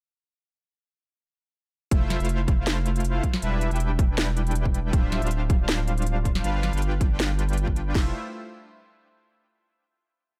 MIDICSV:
0, 0, Header, 1, 4, 480
1, 0, Start_track
1, 0, Tempo, 377358
1, 2435, Time_signature, 4, 2, 24, 8
1, 13224, End_track
2, 0, Start_track
2, 0, Title_t, "Supersaw synth"
2, 0, Program_c, 0, 81
2, 2435, Note_on_c, 0, 57, 78
2, 2435, Note_on_c, 0, 64, 72
2, 2435, Note_on_c, 0, 65, 72
2, 2435, Note_on_c, 0, 72, 74
2, 2435, Note_on_c, 0, 76, 91
2, 2771, Note_off_c, 0, 65, 0
2, 2772, Note_off_c, 0, 57, 0
2, 2772, Note_off_c, 0, 64, 0
2, 2772, Note_off_c, 0, 72, 0
2, 2772, Note_off_c, 0, 76, 0
2, 2802, Note_on_c, 0, 57, 81
2, 2802, Note_on_c, 0, 64, 74
2, 2802, Note_on_c, 0, 65, 73
2, 2802, Note_on_c, 0, 72, 75
2, 2802, Note_on_c, 0, 77, 92
2, 4101, Note_off_c, 0, 57, 0
2, 4101, Note_off_c, 0, 64, 0
2, 4101, Note_off_c, 0, 65, 0
2, 4101, Note_off_c, 0, 72, 0
2, 4101, Note_off_c, 0, 77, 0
2, 4355, Note_on_c, 0, 55, 80
2, 4355, Note_on_c, 0, 62, 72
2, 4355, Note_on_c, 0, 71, 76
2, 4355, Note_on_c, 0, 76, 90
2, 4356, Note_on_c, 0, 64, 71
2, 4692, Note_off_c, 0, 55, 0
2, 4692, Note_off_c, 0, 62, 0
2, 4692, Note_off_c, 0, 64, 0
2, 4692, Note_off_c, 0, 71, 0
2, 4692, Note_off_c, 0, 76, 0
2, 4720, Note_on_c, 0, 62, 71
2, 4720, Note_on_c, 0, 79, 90
2, 4721, Note_on_c, 0, 55, 82
2, 4721, Note_on_c, 0, 64, 75
2, 4721, Note_on_c, 0, 71, 72
2, 6247, Note_off_c, 0, 55, 0
2, 6247, Note_off_c, 0, 62, 0
2, 6247, Note_off_c, 0, 64, 0
2, 6247, Note_off_c, 0, 71, 0
2, 6247, Note_off_c, 0, 79, 0
2, 6274, Note_on_c, 0, 55, 82
2, 6274, Note_on_c, 0, 62, 73
2, 6274, Note_on_c, 0, 65, 74
2, 6274, Note_on_c, 0, 72, 74
2, 6274, Note_on_c, 0, 76, 85
2, 6611, Note_off_c, 0, 55, 0
2, 6611, Note_off_c, 0, 62, 0
2, 6611, Note_off_c, 0, 65, 0
2, 6611, Note_off_c, 0, 72, 0
2, 6611, Note_off_c, 0, 76, 0
2, 6641, Note_on_c, 0, 55, 81
2, 6641, Note_on_c, 0, 62, 74
2, 6641, Note_on_c, 0, 72, 74
2, 6642, Note_on_c, 0, 65, 73
2, 6642, Note_on_c, 0, 77, 91
2, 8167, Note_off_c, 0, 55, 0
2, 8167, Note_off_c, 0, 62, 0
2, 8167, Note_off_c, 0, 65, 0
2, 8167, Note_off_c, 0, 72, 0
2, 8168, Note_off_c, 0, 77, 0
2, 8196, Note_on_c, 0, 55, 83
2, 8196, Note_on_c, 0, 62, 74
2, 8196, Note_on_c, 0, 65, 77
2, 8196, Note_on_c, 0, 71, 74
2, 8196, Note_on_c, 0, 77, 92
2, 8532, Note_off_c, 0, 55, 0
2, 8532, Note_off_c, 0, 62, 0
2, 8532, Note_off_c, 0, 65, 0
2, 8532, Note_off_c, 0, 71, 0
2, 8532, Note_off_c, 0, 77, 0
2, 8562, Note_on_c, 0, 71, 72
2, 8563, Note_on_c, 0, 55, 82
2, 8563, Note_on_c, 0, 65, 78
2, 8563, Note_on_c, 0, 79, 92
2, 8564, Note_on_c, 0, 62, 74
2, 10088, Note_off_c, 0, 55, 0
2, 10088, Note_off_c, 0, 62, 0
2, 10088, Note_off_c, 0, 65, 0
2, 10088, Note_off_c, 0, 71, 0
2, 10088, Note_off_c, 0, 79, 0
2, 10116, Note_on_c, 0, 65, 80
2, 10116, Note_on_c, 0, 72, 78
2, 10117, Note_on_c, 0, 57, 86
2, 10117, Note_on_c, 0, 64, 78
2, 10117, Note_on_c, 0, 76, 94
2, 10297, Note_off_c, 0, 57, 0
2, 10297, Note_off_c, 0, 64, 0
2, 10297, Note_off_c, 0, 65, 0
2, 10297, Note_off_c, 0, 72, 0
2, 10297, Note_off_c, 0, 76, 0
2, 13224, End_track
3, 0, Start_track
3, 0, Title_t, "Sub bass"
3, 0, Program_c, 1, 38
3, 2436, Note_on_c, 1, 29, 97
3, 2777, Note_off_c, 1, 29, 0
3, 2802, Note_on_c, 1, 29, 97
3, 4079, Note_off_c, 1, 29, 0
3, 4356, Note_on_c, 1, 28, 100
3, 4697, Note_off_c, 1, 28, 0
3, 4724, Note_on_c, 1, 28, 97
3, 6253, Note_off_c, 1, 28, 0
3, 6273, Note_on_c, 1, 26, 98
3, 6616, Note_off_c, 1, 26, 0
3, 6643, Note_on_c, 1, 26, 98
3, 8172, Note_off_c, 1, 26, 0
3, 8194, Note_on_c, 1, 31, 97
3, 8536, Note_off_c, 1, 31, 0
3, 8562, Note_on_c, 1, 31, 100
3, 10092, Note_off_c, 1, 31, 0
3, 10115, Note_on_c, 1, 29, 94
3, 10338, Note_off_c, 1, 29, 0
3, 13224, End_track
4, 0, Start_track
4, 0, Title_t, "Drums"
4, 2435, Note_on_c, 9, 36, 116
4, 2436, Note_on_c, 9, 42, 82
4, 2562, Note_off_c, 9, 36, 0
4, 2563, Note_off_c, 9, 42, 0
4, 2675, Note_on_c, 9, 40, 60
4, 2675, Note_on_c, 9, 42, 69
4, 2802, Note_off_c, 9, 40, 0
4, 2802, Note_off_c, 9, 42, 0
4, 2802, Note_on_c, 9, 42, 52
4, 2858, Note_off_c, 9, 42, 0
4, 2858, Note_on_c, 9, 42, 66
4, 2914, Note_off_c, 9, 42, 0
4, 2914, Note_on_c, 9, 42, 77
4, 3041, Note_off_c, 9, 42, 0
4, 3154, Note_on_c, 9, 42, 68
4, 3155, Note_on_c, 9, 36, 104
4, 3281, Note_off_c, 9, 42, 0
4, 3282, Note_off_c, 9, 36, 0
4, 3393, Note_on_c, 9, 38, 117
4, 3393, Note_on_c, 9, 42, 82
4, 3520, Note_off_c, 9, 38, 0
4, 3520, Note_off_c, 9, 42, 0
4, 3633, Note_on_c, 9, 42, 72
4, 3760, Note_off_c, 9, 42, 0
4, 3762, Note_on_c, 9, 42, 53
4, 3818, Note_off_c, 9, 42, 0
4, 3818, Note_on_c, 9, 42, 70
4, 3874, Note_off_c, 9, 42, 0
4, 3874, Note_on_c, 9, 42, 85
4, 4001, Note_off_c, 9, 42, 0
4, 4114, Note_on_c, 9, 36, 64
4, 4115, Note_on_c, 9, 42, 69
4, 4242, Note_off_c, 9, 36, 0
4, 4242, Note_off_c, 9, 42, 0
4, 4242, Note_on_c, 9, 40, 77
4, 4355, Note_on_c, 9, 42, 81
4, 4370, Note_off_c, 9, 40, 0
4, 4482, Note_off_c, 9, 42, 0
4, 4595, Note_on_c, 9, 42, 67
4, 4722, Note_off_c, 9, 42, 0
4, 4722, Note_on_c, 9, 42, 50
4, 4779, Note_off_c, 9, 42, 0
4, 4779, Note_on_c, 9, 42, 69
4, 4835, Note_off_c, 9, 42, 0
4, 4835, Note_on_c, 9, 42, 73
4, 4962, Note_off_c, 9, 42, 0
4, 5074, Note_on_c, 9, 36, 113
4, 5075, Note_on_c, 9, 42, 69
4, 5201, Note_off_c, 9, 36, 0
4, 5202, Note_off_c, 9, 42, 0
4, 5314, Note_on_c, 9, 38, 124
4, 5314, Note_on_c, 9, 42, 80
4, 5441, Note_off_c, 9, 38, 0
4, 5441, Note_off_c, 9, 42, 0
4, 5554, Note_on_c, 9, 42, 66
4, 5681, Note_off_c, 9, 42, 0
4, 5681, Note_on_c, 9, 42, 49
4, 5738, Note_off_c, 9, 42, 0
4, 5738, Note_on_c, 9, 42, 64
4, 5794, Note_off_c, 9, 42, 0
4, 5794, Note_on_c, 9, 42, 82
4, 5921, Note_off_c, 9, 42, 0
4, 5921, Note_on_c, 9, 36, 67
4, 6034, Note_on_c, 9, 42, 67
4, 6048, Note_off_c, 9, 36, 0
4, 6162, Note_off_c, 9, 42, 0
4, 6273, Note_on_c, 9, 36, 120
4, 6274, Note_on_c, 9, 42, 78
4, 6400, Note_off_c, 9, 36, 0
4, 6401, Note_off_c, 9, 42, 0
4, 6513, Note_on_c, 9, 40, 58
4, 6513, Note_on_c, 9, 42, 65
4, 6640, Note_off_c, 9, 42, 0
4, 6640, Note_on_c, 9, 42, 47
4, 6641, Note_off_c, 9, 40, 0
4, 6697, Note_off_c, 9, 42, 0
4, 6697, Note_on_c, 9, 42, 65
4, 6753, Note_off_c, 9, 42, 0
4, 6753, Note_on_c, 9, 42, 75
4, 6880, Note_off_c, 9, 42, 0
4, 6994, Note_on_c, 9, 36, 117
4, 6994, Note_on_c, 9, 42, 64
4, 7121, Note_off_c, 9, 36, 0
4, 7121, Note_off_c, 9, 42, 0
4, 7233, Note_on_c, 9, 38, 127
4, 7233, Note_on_c, 9, 42, 76
4, 7360, Note_off_c, 9, 38, 0
4, 7360, Note_off_c, 9, 42, 0
4, 7473, Note_on_c, 9, 42, 66
4, 7601, Note_off_c, 9, 42, 0
4, 7602, Note_on_c, 9, 42, 51
4, 7658, Note_off_c, 9, 42, 0
4, 7658, Note_on_c, 9, 42, 63
4, 7714, Note_off_c, 9, 42, 0
4, 7714, Note_on_c, 9, 42, 77
4, 7842, Note_off_c, 9, 42, 0
4, 7954, Note_on_c, 9, 36, 65
4, 7955, Note_on_c, 9, 42, 64
4, 8081, Note_off_c, 9, 36, 0
4, 8081, Note_on_c, 9, 40, 75
4, 8082, Note_off_c, 9, 42, 0
4, 8195, Note_on_c, 9, 42, 76
4, 8209, Note_off_c, 9, 40, 0
4, 8322, Note_off_c, 9, 42, 0
4, 8436, Note_on_c, 9, 40, 59
4, 8436, Note_on_c, 9, 42, 64
4, 8561, Note_off_c, 9, 42, 0
4, 8561, Note_on_c, 9, 42, 48
4, 8563, Note_off_c, 9, 40, 0
4, 8618, Note_off_c, 9, 42, 0
4, 8618, Note_on_c, 9, 42, 61
4, 8676, Note_off_c, 9, 42, 0
4, 8676, Note_on_c, 9, 42, 68
4, 8803, Note_off_c, 9, 42, 0
4, 8914, Note_on_c, 9, 36, 113
4, 8915, Note_on_c, 9, 42, 66
4, 9042, Note_off_c, 9, 36, 0
4, 9042, Note_off_c, 9, 42, 0
4, 9155, Note_on_c, 9, 38, 121
4, 9155, Note_on_c, 9, 42, 77
4, 9282, Note_off_c, 9, 38, 0
4, 9282, Note_off_c, 9, 42, 0
4, 9397, Note_on_c, 9, 42, 65
4, 9522, Note_off_c, 9, 42, 0
4, 9522, Note_on_c, 9, 42, 47
4, 9580, Note_off_c, 9, 42, 0
4, 9580, Note_on_c, 9, 42, 60
4, 9635, Note_off_c, 9, 42, 0
4, 9635, Note_on_c, 9, 42, 78
4, 9762, Note_on_c, 9, 36, 67
4, 9763, Note_off_c, 9, 42, 0
4, 9875, Note_on_c, 9, 42, 60
4, 9889, Note_off_c, 9, 36, 0
4, 10002, Note_off_c, 9, 42, 0
4, 10115, Note_on_c, 9, 36, 101
4, 10115, Note_on_c, 9, 38, 106
4, 10115, Note_on_c, 9, 49, 86
4, 10242, Note_off_c, 9, 36, 0
4, 10242, Note_off_c, 9, 38, 0
4, 10242, Note_off_c, 9, 49, 0
4, 13224, End_track
0, 0, End_of_file